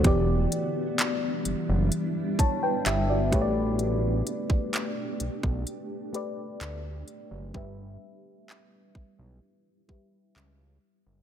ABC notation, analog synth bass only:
X:1
M:4/4
L:1/16
Q:1/4=64
K:Amix
V:1 name="Analog synth bass" clef=bass
E,,,2 z4 F,,, F,,, z4 G,,,2 A,,,2- | A,,,2 z4 B,,, B,,, z4 D,,2 z F,,, | G,,,2 z4 B,,, B,,, z4 C,,2 z F,,, |]